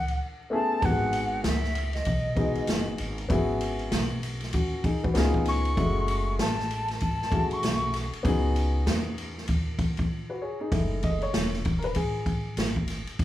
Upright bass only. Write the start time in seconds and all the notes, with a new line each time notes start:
Already playing: C#2
0.82 G#1
1.44 C#2
2.06 B1
2.56 muted upright bass stroke
2.68 F#1
2.99 G#1
3.30 G#1
3.92 B1
4.54 D#2
5.04 muted upright bass stroke
5.15 C#2
5.77 F#1
6.39 A1
7.02 G#1
7.51 muted upright bass stroke
7.63 B1
8.13 muted upright bass stroke
8.25 C#2
8.86 E2
9.49 D#2
10.72 F#1
11.33 E1
11.96 A1
12.57 G#1
13.07 muted upright bass stroke
13.19 E1